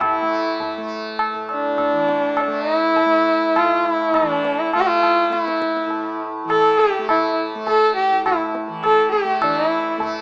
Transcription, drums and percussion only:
0.01 tabla na, tabla ge
0.60 tabla tin, tabla ge
1.19 tabla na
1.49 tabla na
1.78 tabla na, tabla ge
2.09 tabla te
2.37 tabla na, tabla ge
2.96 tabla tin, tabla ge
3.56 tabla na
4.14 tabla na, tabla ge
4.44 tabla te
4.73 tabla na
5.03 tabla na
5.32 tabla te
5.48 tabla te
5.62 tabla ke
5.77 tabla te
5.90 tabla tin
6.50 tabla na
7.09 tabla na, tabla ge
7.67 tabla tin, tabla ge
8.26 tabla na, tabla ge
8.55 tabla te
8.84 tabla na, tabla ge
9.13 tabla te
9.42 tabla na, tabla ge
10.00 tabla tin, tabla ge

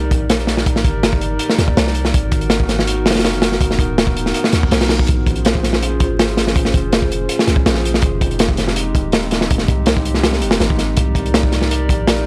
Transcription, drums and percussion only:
0.11 kick, closed hi-hat
0.30 snare, closed hi-hat
0.39 closed hi-hat
0.47 snare, closed hi-hat
0.57 snare
0.66 kick, closed hi-hat
0.76 snare
0.84 kick, closed hi-hat
1.03 snare, closed hi-hat
1.13 kick
1.21 closed hi-hat
1.39 closed hi-hat
1.50 snare
1.59 snare, closed hi-hat
1.68 kick
1.77 snare, closed hi-hat
1.87 snare
1.95 closed hi-hat
2.05 snare
2.14 kick, closed hi-hat
2.32 kick, closed hi-hat
2.41 closed hi-hat
2.50 snare, closed hi-hat
2.60 kick
2.69 snare, closed hi-hat
2.79 snare
2.87 closed hi-hat
3.06 snare, closed hi-hat
3.10 snare, closed hi-hat
3.15 snare, closed hi-hat
3.19 snare, closed hi-hat
3.25 snare, closed hi-hat
3.33 closed hi-hat
3.42 snare, closed hi-hat
3.52 snare
3.61 kick, closed hi-hat
3.71 snare
3.79 kick, closed hi-hat
3.98 snare, closed hi-hat
4.07 kick
4.17 closed hi-hat
4.26 snare
4.34 closed hi-hat
4.44 snare
4.52 snare, closed hi-hat
4.63 kick
4.71 snare, closed hi-hat
4.81 snare, closed hi-hat
4.89 snare, closed hi-hat
4.99 kick
5.08 kick, closed hi-hat
5.27 kick, closed hi-hat
5.36 closed hi-hat
5.45 snare, closed hi-hat
5.55 kick
5.63 snare, closed hi-hat
5.73 snare
5.82 closed hi-hat
6.00 kick, closed hi-hat
6.19 snare, closed hi-hat
6.29 closed hi-hat
6.37 snare, closed hi-hat
6.47 snare
6.56 kick, closed hi-hat
6.65 snare
6.74 kick, closed hi-hat
6.92 snare, closed hi-hat
7.02 kick
7.12 closed hi-hat
7.29 closed hi-hat
7.39 snare
7.47 snare, closed hi-hat
7.56 kick
7.66 snare, closed hi-hat
7.74 snare
7.85 closed hi-hat
7.94 snare
8.02 kick, closed hi-hat
8.21 kick, closed hi-hat
8.31 closed hi-hat
8.39 snare, closed hi-hat
8.49 kick
8.57 snare, closed hi-hat
8.67 snare
8.76 closed hi-hat
8.95 kick, closed hi-hat
9.12 snare, closed hi-hat
9.23 closed hi-hat
9.31 snare, closed hi-hat
9.41 snare
9.50 kick, closed hi-hat
9.58 snare
9.68 kick, closed hi-hat
9.86 snare, closed hi-hat
9.97 kick
10.05 closed hi-hat
10.14 snare
10.23 snare, closed hi-hat
10.33 snare
10.42 closed hi-hat
10.51 snare, closed hi-hat
10.60 snare, closed hi-hat
10.70 kick
10.79 snare, closed hi-hat
10.97 kick, closed hi-hat
11.15 kick, closed hi-hat
11.26 closed hi-hat
11.34 snare, closed hi-hat
11.43 kick
11.52 snare, closed hi-hat
11.61 snare
11.71 closed hi-hat
11.89 kick, closed hi-hat
12.07 snare, closed hi-hat
12.16 closed hi-hat

